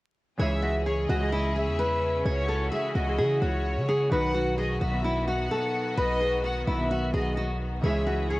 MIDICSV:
0, 0, Header, 1, 6, 480
1, 0, Start_track
1, 0, Key_signature, 4, "minor"
1, 0, Tempo, 465116
1, 407, Time_signature, 4, 2, 24, 8
1, 8667, End_track
2, 0, Start_track
2, 0, Title_t, "Violin section"
2, 0, Program_c, 0, 48
2, 407, Note_on_c, 0, 76, 103
2, 858, Note_off_c, 0, 76, 0
2, 886, Note_on_c, 0, 73, 84
2, 1114, Note_off_c, 0, 73, 0
2, 1122, Note_on_c, 0, 75, 94
2, 1575, Note_off_c, 0, 75, 0
2, 1604, Note_on_c, 0, 76, 92
2, 2284, Note_off_c, 0, 76, 0
2, 2328, Note_on_c, 0, 73, 108
2, 2778, Note_off_c, 0, 73, 0
2, 2801, Note_on_c, 0, 76, 94
2, 3031, Note_off_c, 0, 76, 0
2, 3046, Note_on_c, 0, 75, 80
2, 3497, Note_off_c, 0, 75, 0
2, 3529, Note_on_c, 0, 73, 90
2, 4207, Note_off_c, 0, 73, 0
2, 4247, Note_on_c, 0, 78, 108
2, 4698, Note_off_c, 0, 78, 0
2, 4726, Note_on_c, 0, 75, 87
2, 4954, Note_off_c, 0, 75, 0
2, 4968, Note_on_c, 0, 76, 87
2, 5418, Note_off_c, 0, 76, 0
2, 5444, Note_on_c, 0, 78, 90
2, 6124, Note_off_c, 0, 78, 0
2, 6164, Note_on_c, 0, 75, 118
2, 6616, Note_off_c, 0, 75, 0
2, 6645, Note_on_c, 0, 78, 85
2, 6874, Note_off_c, 0, 78, 0
2, 6885, Note_on_c, 0, 76, 80
2, 7336, Note_off_c, 0, 76, 0
2, 7367, Note_on_c, 0, 75, 84
2, 7595, Note_off_c, 0, 75, 0
2, 8087, Note_on_c, 0, 76, 104
2, 8538, Note_off_c, 0, 76, 0
2, 8566, Note_on_c, 0, 73, 85
2, 8667, Note_off_c, 0, 73, 0
2, 8667, End_track
3, 0, Start_track
3, 0, Title_t, "Nylon-string guitar"
3, 0, Program_c, 1, 24
3, 407, Note_on_c, 1, 73, 86
3, 612, Note_off_c, 1, 73, 0
3, 644, Note_on_c, 1, 66, 78
3, 850, Note_off_c, 1, 66, 0
3, 888, Note_on_c, 1, 68, 78
3, 1093, Note_off_c, 1, 68, 0
3, 1129, Note_on_c, 1, 66, 88
3, 1333, Note_off_c, 1, 66, 0
3, 1366, Note_on_c, 1, 64, 92
3, 1572, Note_off_c, 1, 64, 0
3, 1609, Note_on_c, 1, 68, 74
3, 1813, Note_off_c, 1, 68, 0
3, 1846, Note_on_c, 1, 71, 93
3, 2297, Note_off_c, 1, 71, 0
3, 2327, Note_on_c, 1, 73, 82
3, 2532, Note_off_c, 1, 73, 0
3, 2563, Note_on_c, 1, 69, 80
3, 2770, Note_off_c, 1, 69, 0
3, 2804, Note_on_c, 1, 68, 82
3, 3010, Note_off_c, 1, 68, 0
3, 3046, Note_on_c, 1, 66, 73
3, 3252, Note_off_c, 1, 66, 0
3, 3286, Note_on_c, 1, 68, 89
3, 3491, Note_off_c, 1, 68, 0
3, 3526, Note_on_c, 1, 66, 75
3, 3977, Note_off_c, 1, 66, 0
3, 4009, Note_on_c, 1, 68, 93
3, 4213, Note_off_c, 1, 68, 0
3, 4248, Note_on_c, 1, 71, 95
3, 4453, Note_off_c, 1, 71, 0
3, 4484, Note_on_c, 1, 66, 78
3, 4691, Note_off_c, 1, 66, 0
3, 4725, Note_on_c, 1, 68, 79
3, 4931, Note_off_c, 1, 68, 0
3, 4964, Note_on_c, 1, 66, 76
3, 5171, Note_off_c, 1, 66, 0
3, 5205, Note_on_c, 1, 64, 72
3, 5411, Note_off_c, 1, 64, 0
3, 5446, Note_on_c, 1, 66, 76
3, 5652, Note_off_c, 1, 66, 0
3, 5688, Note_on_c, 1, 69, 86
3, 6138, Note_off_c, 1, 69, 0
3, 6166, Note_on_c, 1, 71, 94
3, 6372, Note_off_c, 1, 71, 0
3, 6403, Note_on_c, 1, 68, 80
3, 6610, Note_off_c, 1, 68, 0
3, 6647, Note_on_c, 1, 66, 83
3, 6852, Note_off_c, 1, 66, 0
3, 6888, Note_on_c, 1, 64, 85
3, 7093, Note_off_c, 1, 64, 0
3, 7130, Note_on_c, 1, 66, 94
3, 7334, Note_off_c, 1, 66, 0
3, 7365, Note_on_c, 1, 68, 83
3, 7571, Note_off_c, 1, 68, 0
3, 7606, Note_on_c, 1, 66, 90
3, 7812, Note_off_c, 1, 66, 0
3, 8087, Note_on_c, 1, 73, 86
3, 8292, Note_off_c, 1, 73, 0
3, 8324, Note_on_c, 1, 66, 78
3, 8531, Note_off_c, 1, 66, 0
3, 8569, Note_on_c, 1, 68, 78
3, 8667, Note_off_c, 1, 68, 0
3, 8667, End_track
4, 0, Start_track
4, 0, Title_t, "String section"
4, 0, Program_c, 2, 48
4, 406, Note_on_c, 2, 49, 82
4, 406, Note_on_c, 2, 61, 77
4, 406, Note_on_c, 2, 64, 77
4, 406, Note_on_c, 2, 68, 91
4, 2307, Note_off_c, 2, 68, 0
4, 2326, Note_on_c, 2, 66, 91
4, 4208, Note_off_c, 2, 49, 0
4, 4208, Note_off_c, 2, 61, 0
4, 4208, Note_off_c, 2, 64, 0
4, 4227, Note_off_c, 2, 66, 0
4, 4246, Note_on_c, 2, 51, 75
4, 4246, Note_on_c, 2, 59, 86
4, 4246, Note_on_c, 2, 66, 94
4, 8048, Note_off_c, 2, 51, 0
4, 8048, Note_off_c, 2, 59, 0
4, 8048, Note_off_c, 2, 66, 0
4, 8086, Note_on_c, 2, 49, 81
4, 8086, Note_on_c, 2, 61, 76
4, 8086, Note_on_c, 2, 64, 75
4, 8087, Note_on_c, 2, 68, 90
4, 8667, Note_off_c, 2, 49, 0
4, 8667, Note_off_c, 2, 61, 0
4, 8667, Note_off_c, 2, 64, 0
4, 8667, Note_off_c, 2, 68, 0
4, 8667, End_track
5, 0, Start_track
5, 0, Title_t, "Synth keys"
5, 0, Program_c, 3, 88
5, 387, Note_on_c, 3, 49, 97
5, 396, Note_on_c, 3, 52, 98
5, 406, Note_on_c, 3, 56, 84
5, 415, Note_on_c, 3, 64, 87
5, 424, Note_on_c, 3, 68, 108
5, 587, Control_c, 3, 64, 127
5, 939, Note_off_c, 3, 49, 0
5, 943, Note_off_c, 3, 52, 0
5, 948, Note_off_c, 3, 56, 0
5, 952, Note_off_c, 3, 64, 0
5, 957, Note_off_c, 3, 68, 0
5, 1234, Note_on_c, 3, 49, 76
5, 1244, Note_on_c, 3, 52, 69
5, 1253, Note_on_c, 3, 56, 71
5, 1262, Note_on_c, 3, 64, 67
5, 1271, Note_on_c, 3, 68, 85
5, 1859, Note_off_c, 3, 49, 0
5, 1864, Note_off_c, 3, 52, 0
5, 1869, Note_off_c, 3, 56, 0
5, 1873, Note_off_c, 3, 64, 0
5, 1878, Note_off_c, 3, 68, 0
5, 3153, Note_on_c, 3, 49, 77
5, 3163, Note_on_c, 3, 52, 69
5, 3172, Note_on_c, 3, 56, 67
5, 3181, Note_on_c, 3, 64, 69
5, 3191, Note_on_c, 3, 68, 94
5, 3779, Note_off_c, 3, 49, 0
5, 3784, Note_off_c, 3, 52, 0
5, 3788, Note_off_c, 3, 56, 0
5, 3793, Note_off_c, 3, 64, 0
5, 3798, Note_off_c, 3, 68, 0
5, 4227, Note_on_c, 3, 47, 107
5, 4236, Note_on_c, 3, 51, 94
5, 4245, Note_on_c, 3, 54, 90
5, 4255, Note_on_c, 3, 63, 90
5, 4257, Control_c, 3, 64, 0
5, 4264, Note_on_c, 3, 66, 115
5, 4458, Control_c, 3, 64, 127
5, 4778, Note_off_c, 3, 47, 0
5, 4783, Note_off_c, 3, 51, 0
5, 4788, Note_off_c, 3, 54, 0
5, 4792, Note_off_c, 3, 63, 0
5, 4797, Note_off_c, 3, 66, 0
5, 5069, Note_on_c, 3, 47, 79
5, 5079, Note_on_c, 3, 51, 72
5, 5088, Note_on_c, 3, 54, 72
5, 5097, Note_on_c, 3, 59, 71
5, 5106, Note_on_c, 3, 66, 82
5, 5697, Note_off_c, 3, 47, 0
5, 5702, Note_off_c, 3, 51, 0
5, 5706, Note_off_c, 3, 54, 0
5, 5711, Note_off_c, 3, 59, 0
5, 5716, Note_off_c, 3, 66, 0
5, 6994, Note_on_c, 3, 47, 71
5, 7004, Note_on_c, 3, 51, 67
5, 7013, Note_on_c, 3, 54, 68
5, 7022, Note_on_c, 3, 59, 69
5, 7032, Note_on_c, 3, 66, 78
5, 7620, Note_off_c, 3, 47, 0
5, 7624, Note_off_c, 3, 51, 0
5, 7629, Note_off_c, 3, 54, 0
5, 7634, Note_off_c, 3, 59, 0
5, 7638, Note_off_c, 3, 66, 0
5, 8067, Note_on_c, 3, 49, 97
5, 8076, Note_on_c, 3, 52, 96
5, 8086, Note_on_c, 3, 56, 89
5, 8095, Note_on_c, 3, 64, 88
5, 8099, Control_c, 3, 64, 0
5, 8104, Note_on_c, 3, 68, 104
5, 8307, Control_c, 3, 64, 127
5, 8618, Note_off_c, 3, 49, 0
5, 8623, Note_off_c, 3, 52, 0
5, 8628, Note_off_c, 3, 56, 0
5, 8633, Note_off_c, 3, 64, 0
5, 8637, Note_off_c, 3, 68, 0
5, 8667, End_track
6, 0, Start_track
6, 0, Title_t, "808-style bass"
6, 0, Program_c, 4, 38
6, 406, Note_on_c, 4, 37, 115
6, 1097, Note_off_c, 4, 37, 0
6, 1126, Note_on_c, 4, 37, 112
6, 1726, Note_on_c, 4, 40, 99
6, 1742, Note_off_c, 4, 37, 0
6, 2296, Note_off_c, 4, 40, 0
6, 2326, Note_on_c, 4, 37, 113
6, 2787, Note_off_c, 4, 37, 0
6, 3046, Note_on_c, 4, 37, 110
6, 3286, Note_on_c, 4, 49, 99
6, 3302, Note_off_c, 4, 37, 0
6, 3514, Note_off_c, 4, 49, 0
6, 3526, Note_on_c, 4, 37, 112
6, 3886, Note_on_c, 4, 49, 98
6, 3902, Note_off_c, 4, 37, 0
6, 4228, Note_off_c, 4, 49, 0
6, 4246, Note_on_c, 4, 35, 116
6, 4938, Note_off_c, 4, 35, 0
6, 4966, Note_on_c, 4, 35, 104
6, 5657, Note_off_c, 4, 35, 0
6, 6166, Note_on_c, 4, 35, 117
6, 6857, Note_off_c, 4, 35, 0
6, 6886, Note_on_c, 4, 35, 105
6, 7347, Note_off_c, 4, 35, 0
6, 7366, Note_on_c, 4, 35, 109
6, 8057, Note_off_c, 4, 35, 0
6, 8086, Note_on_c, 4, 37, 112
6, 8667, Note_off_c, 4, 37, 0
6, 8667, End_track
0, 0, End_of_file